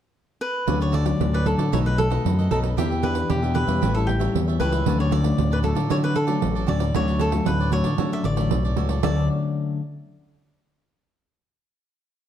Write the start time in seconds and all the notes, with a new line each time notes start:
0.41 B4
0.67 D2 D3 F#3 A3 C#4 F#4 A4 C#5 D5, pandeiro
0.80 A4 C#5 D5, pandeiro
0.92 F#4 A4 C#5 D5, pandeiro
1.05 F#3 A3 C#4, muted cavaquinho stroke, pandeiro
1.20 D2 A2, pandeiro
1.33 A4 B4 C#5 D5, pandeiro
1.45 F#3 A3 C#4 F#4 A4 C#5 D5, pandeiro
1.58 D3 A4 C#5 D5, pandeiro
1.72 B1 B2 F#3 A3 D#4 A4 B4 C#5 D#5, pandeiro
1.86 A4 B4 D#5, pandeiro
1.98 A4, muted cavaquinho stroke, pandeiro
2.10 F#3 A3 D#4 A4 B4 D#5, pandeiro
2.25 F#2, pandeiro
2.39 A4 B4 D#5, pandeiro
2.51 B1 F#3 A3 D#4 A4 B4 D#5, pandeiro
2.63 A4 B4 D#5, pandeiro
2.77 E2 E3 B3 D4 G4 B4 E5, pandeiro
2.90 G4 B4 E5, pandeiro
3.02 B3 D4 G4 B4 E5, pandeiro
3.15 muted cavaquinho stroke, pandeiro
3.29 E2 B2 G4, pandeiro
3.42 B3 D4 G4 B4 E5, pandeiro
3.54 D4 G4 B4 E5, pandeiro
3.67 E2 G3 C#4 E4 G4 B4 E5, pandeiro
3.82 A1 A2 G4 A4 C#5 E5, pandeiro
3.95 G3 C#4 E4 A4 C#5 E5, pandeiro
4.07 G4, muted cavaquinho stroke, pandeiro
4.19 G3 C#4 E4 A4 C#5 E5, pandeiro
4.35 E2 E3, pandeiro
4.48 A4 C#5 E5, pandeiro
4.59 C#2 G3 C#4 E4 G4 A4 B4 C#5 E5, pandeiro
4.72 A4 C#5 E5, pandeiro
4.86 D2 D3 F#3 A3 C#4 F#4 A4 C#5 D5, pandeiro
5.00 A4 C#5 D5, pandeiro
5.11 F#4 A4 C#5 D5, pandeiro
5.24 F#3 A3 C#4, muted cavaquinho stroke, pandeiro
5.38 D2 A2, pandeiro
5.51 A4 B4 C#5 D5, pandeiro
5.62 F#3 A3 C#4 F#4 A4 C#5 D5, pandeiro
5.75 D3 A4 C#5 D5, pandeiro
5.90 D3 F#3 A3 C#4 F#4 A4 C#5 D5, pandeiro
6.03 A4 B4 C#5 D5, pandeiro
6.15 A4, muted cavaquinho stroke, pandeiro
6.27 F#3 A3 C#4 A4 C#5 D5, pandeiro
6.42 A1 A2, pandeiro
6.55 A4 C#5 D5, pandeiro
6.67 D2 F#3 A3 C#4 F#4 A4 C#5 D5, pandeiro
6.79 A4 C#5 D5, pandeiro
6.94 D2 D3 F#3 A3 C#4 F#4 A4 C#5 D5, pandeiro
7.08 A4 C#5 D5, pandeiro
7.19 F#4 A4 C#5 D5, pandeiro
7.32 F#3 A3 C#4, muted cavaquinho stroke, pandeiro
7.46 D2 A2 B4, pandeiro
7.60 A4 C#5 D5, pandeiro
7.72 F#3 A3 C#4 F#4 A4 C#5 D5, pandeiro
7.84 D3 A4 C#5 D5, pandeiro
7.98 D3 F#3 A3 C#4 F#4 A4 C#5 D5, pandeiro
8.12 A4 C#5 D5 E5, pandeiro
8.24 A1 D5, muted cavaquinho stroke, pandeiro
8.36 F#3 A3 A4 C#5 D5, pandeiro
8.51 B1 A2, pandeiro
8.64 A4 C#5 D5, pandeiro
8.76 C#2 F#3 A3 C#4 F#4 A4 C#5 D5, pandeiro
8.89 A4 C#5 D5, pandeiro
9.03 D2 D3 F#3 A3 C#4 F#4 A4 C#5 D5, pandeiro